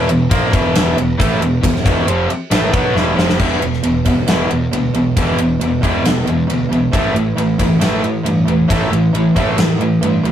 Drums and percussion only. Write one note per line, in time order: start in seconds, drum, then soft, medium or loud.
0.09 ride medium
0.31 kick loud
0.31 ride medium
0.53 kick loud
0.53 ride medium
0.75 snare loud
0.75 ride loud
0.98 ride medium
1.20 kick loud
1.20 ride loud
1.42 ride medium
1.63 kick medium
1.63 ride medium
1.76 snare soft
1.86 kick loud
1.86 ride medium
2.08 ride medium
2.30 ride medium
2.51 snare loud
2.51 ride medium
2.73 kick loud
2.73 ride medium
2.96 snare medium
3.19 snare medium
3.29 snare medium
3.39 kick loud
3.39 crash medium
3.62 ride medium
3.73 snare soft
3.83 ride medium
4.05 kick medium
4.05 ride medium
4.28 snare loud
4.28 ride medium
4.51 ride medium
4.73 ride medium
4.94 ride medium
5.17 kick loud
5.17 ride medium
5.38 ride medium
5.61 ride medium
5.83 kick medium
5.83 ride medium
6.05 snare loud
6.05 ride medium
6.27 ride medium
6.50 ride medium
6.73 ride medium
6.93 kick loud
6.93 ride medium
7.16 ride medium
7.38 ride medium
7.59 kick medium
7.59 ride medium
7.81 snare loud
7.81 ride medium
8.04 ride medium
8.26 ride medium
8.48 ride medium
8.70 kick loud
8.70 ride medium
8.93 ride medium
9.15 ride medium
9.36 kick medium
9.36 ride medium
9.58 snare loud
9.58 ride medium
9.81 ride medium
10.03 ride medium
10.25 ride medium